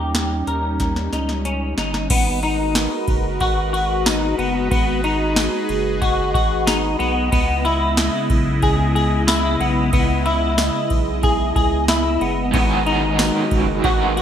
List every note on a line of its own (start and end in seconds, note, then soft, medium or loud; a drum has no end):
0.00 0.43 D#2 loud
0.00 2.08 G3 medium
0.00 2.08 C#4 medium
0.00 2.07 D#4 medium
0.00 0.47 G4 medium
0.15 snare loud
0.15 closed hi-hat medium
0.47 1.09 D#2 medium
0.47 1.13 A#4 medium
0.47 closed hi-hat soft
0.80 kick medium
0.80 snare soft
0.80 closed hi-hat medium
0.96 snare soft
1.12 1.74 C#2 medium
1.12 1.45 D#4 medium
1.12 snare medium
1.12 closed hi-hat soft
1.29 snare soft
1.45 1.77 C#4 medium
1.45 closed hi-hat medium
1.77 2.09 G1 medium
1.77 2.10 D#4 medium
1.77 snare medium
1.77 closed hi-hat soft
1.94 snare medium
2.10 2.88 G#1 loud
2.10 14.22 G#3 medium
2.10 2.43 B3 medium
2.10 7.28 F#4 medium
2.10 4.69 A#4 medium
2.10 7.28 B4 medium
2.10 14.22 D#5 medium
2.10 kick loud
2.10 crash loud
2.10 ride medium
2.43 3.08 D#4 medium
2.43 ride soft
2.75 snare loud
2.75 ride medium
2.75 tambourine medium
3.08 3.39 F#1 loud
3.08 kick loud
3.08 ride medium
3.40 4.35 G#1 loud
3.40 3.72 F#4 medium
3.40 kick medium
3.40 ride soft
3.73 4.06 F#4 medium
3.73 ride soft
4.06 4.38 D#4 medium
4.06 snare loud
4.06 ride medium
4.06 tambourine medium
4.39 4.70 F#1 medium
4.39 4.70 B3 medium
4.39 ride soft
4.71 5.49 G#1 loud
4.71 5.04 B3 medium
4.71 7.30 G#4 medium
4.71 kick loud
4.71 ride medium
5.04 5.69 D#4 medium
5.04 ride soft
5.36 snare loud
5.36 ride medium
5.36 tambourine medium
5.69 6.36 F#1 medium
5.69 ride medium
6.02 6.33 F#4 medium
6.02 kick medium
6.02 ride soft
6.34 6.96 G#1 medium
6.34 6.67 F#4 medium
6.34 kick medium
6.34 ride soft
6.67 6.99 D#4 medium
6.67 snare loud
6.67 ride medium
6.67 tambourine medium
6.99 7.31 B1 medium
6.99 7.31 B3 medium
6.99 ride soft
7.32 8.10 C#2 loud
7.32 12.50 C#3 medium
7.32 12.50 B3 medium
7.32 7.65 B3 loud
7.32 12.50 E4 medium
7.32 kick loud
7.32 ride medium
7.65 8.30 E4 medium
7.65 ride soft
7.97 snare loud
7.97 ride medium
7.97 tambourine medium
8.30 8.61 B1 medium
8.30 kick loud
8.30 ride medium
8.62 9.57 C#2 loud
8.62 8.94 G#4 medium
8.62 kick medium
8.62 ride medium
8.95 9.27 G#4 medium
8.95 ride soft
9.27 9.60 E4 medium
9.27 snare loud
9.27 ride medium
9.27 tambourine medium
9.60 9.91 B1 loud
9.60 9.92 B3 medium
9.60 ride soft
9.93 10.71 C#2 loud
9.93 10.26 B3 medium
9.93 kick loud
9.93 ride medium
10.26 10.91 E4 medium
10.26 ride soft
10.58 snare loud
10.58 ride medium
10.58 tambourine medium
10.90 11.53 B1 medium
10.90 kick medium
10.90 ride soft
11.23 11.55 G#4 medium
11.23 kick medium
11.23 ride soft
11.56 12.18 C#2 loud
11.56 11.88 G#4 medium
11.56 kick medium
11.56 ride soft
11.88 12.21 E4 medium
11.88 snare loud
11.88 ride medium
11.88 tambourine medium
12.21 12.52 F#1 loud
12.21 12.53 B3 medium
12.21 ride soft
12.52 13.31 G#1 loud
12.52 13.81 G#2 loud
12.52 13.83 D#3 medium
12.52 13.85 F#3 loud
12.52 12.86 B3 medium
12.52 14.22 F#4 medium
12.52 14.22 A#4 medium
12.52 14.22 B4 medium
12.52 kick loud
12.52 ride medium
12.57 13.87 B3 loud
12.57 13.87 D#4 loud
12.57 13.89 G#4 loud
12.86 13.52 D#4 medium
12.86 ride soft
13.19 snare loud
13.19 ride medium
13.19 tambourine medium
13.51 13.83 F#1 medium
13.51 kick loud
13.51 ride soft
13.82 14.22 G#1 loud
13.82 14.22 G#2 medium
13.82 14.22 D#3 loud
13.82 14.22 F#3 medium
13.82 14.16 F#4 medium
13.82 kick medium
13.82 ride soft
13.87 14.22 B3 loud
13.87 14.22 D#4 loud
13.87 14.22 G#4 loud
14.17 14.22 F#4 medium
14.17 ride soft